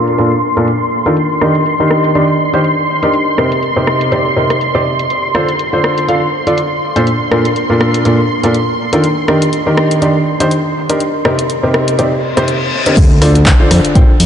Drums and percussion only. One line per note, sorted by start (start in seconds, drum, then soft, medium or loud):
0.08 closed hi-hat medium
0.18 closed hi-hat medium
0.57 closed hi-hat medium
0.68 closed hi-hat soft
1.06 closed hi-hat medium
1.17 closed hi-hat soft
1.41 cross-stick medium
1.55 closed hi-hat medium
1.66 closed hi-hat soft
1.91 cross-stick medium
2.04 closed hi-hat medium
2.15 closed hi-hat soft
2.54 closed hi-hat medium
2.64 closed hi-hat soft
3.03 closed hi-hat medium
3.13 closed hi-hat soft
3.38 cross-stick medium
3.52 closed hi-hat medium
3.63 closed hi-hat soft
3.87 cross-stick medium
4.01 closed hi-hat medium
4.12 closed hi-hat soft
4.50 cross-stick medium
4.50 closed hi-hat medium
4.61 closed hi-hat soft
4.99 closed hi-hat medium
5.10 closed hi-hat soft
5.35 cross-stick medium
5.49 closed hi-hat medium
5.59 closed hi-hat soft
5.84 cross-stick medium
5.98 closed hi-hat medium
6.09 closed hi-hat soft
6.47 closed hi-hat medium
6.58 closed hi-hat soft
6.96 closed hi-hat medium
7.07 closed hi-hat soft
7.31 cross-stick medium
7.45 closed hi-hat medium
7.56 closed hi-hat soft
7.81 cross-stick medium
7.94 closed hi-hat medium
8.05 closed hi-hat soft
8.44 closed hi-hat medium
8.54 closed hi-hat soft
8.93 closed hi-hat medium
9.04 closed hi-hat medium
9.28 cross-stick medium
9.42 closed hi-hat medium
9.53 closed hi-hat medium
9.77 cross-stick medium
9.91 closed hi-hat medium
10.02 closed hi-hat soft
10.40 closed hi-hat medium
10.51 closed hi-hat medium
10.90 closed hi-hat medium
11.00 closed hi-hat medium
11.25 cross-stick medium
11.39 closed hi-hat medium
11.50 closed hi-hat medium
11.74 cross-stick medium
11.88 closed hi-hat medium
11.99 closed hi-hat medium
12.37 cross-stick medium
12.37 closed hi-hat medium
12.48 closed hi-hat medium
12.86 closed hi-hat medium
12.97 kick loud
12.97 closed hi-hat medium
12.97 crash loud
13.22 cross-stick medium
13.22 open hi-hat loud
13.35 closed hi-hat medium
13.46 kick loud
13.46 clap loud
13.46 closed hi-hat medium
13.71 cross-stick medium
13.71 open hi-hat loud
13.85 closed hi-hat medium
13.95 kick loud
13.95 closed hi-hat medium
14.20 open hi-hat loud